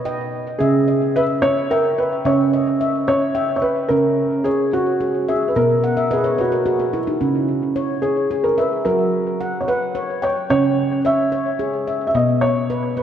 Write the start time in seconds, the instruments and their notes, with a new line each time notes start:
Already playing: handpan B2 B4
0.05 handpan D#5 G5
0.59 handpan C#3 C#4 E5, felt piano G#4
0.88 handpan D#5
1.16 felt piano B4, handpan E5
1.42 felt piano C#5, handpan C#5
1.71 felt piano A#4, handpan E5 G5
1.98 felt piano B4
2.25 handpan C#3 C#4 E5, felt piano C#5
2.53 handpan D#5
2.81 handpan E5
3.08 handpan C#5, felt piano C#5
3.35 handpan E5 G5
3.56 felt piano C#5
3.62 felt piano B4
3.89 handpan C#3 C#4, felt piano A#4
4.44 felt piano G#4, handpan C#5
4.73 felt piano F#4, handpan C#5
5.00 handpan G#4
5.28 felt piano G#4, handpan E5
5.48 felt piano B4
5.56 handpan B2 B3, felt piano A#4
5.84 handpan F#5
5.97 handpan E5
6.11 felt piano G#4, handpan B4 D#5
6.24 handpan C#5
6.38 felt piano F#4, handpan B4
6.52 handpan A#4
6.66 handpan F#4 G#4
6.80 handpan F#4
6.93 handpan E4
7.07 handpan D#4
7.21 handpan C#3 C#4
7.76 handpan C#5
8.02 felt piano G#4, handpan C#5
8.31 handpan G#4
8.44 felt piano A#4
8.58 felt piano B4, handpan E5
8.85 handpan F#3 F#4, felt piano A#4
9.41 handpan F#5
9.61 felt piano C#5
9.68 felt piano B4, handpan F#5
9.95 handpan C#5
10.22 felt piano C#5, handpan G5
10.50 handpan C#3 C#4, felt piano C#5
11.05 handpan C#5, felt piano E5
11.32 handpan C#5
11.59 handpan G#4
11.88 handpan E5
12.07 felt piano E5
12.14 handpan B2 B3, felt piano D#5
12.41 felt piano C#5
12.70 handpan B4
12.97 felt piano B4, handpan B4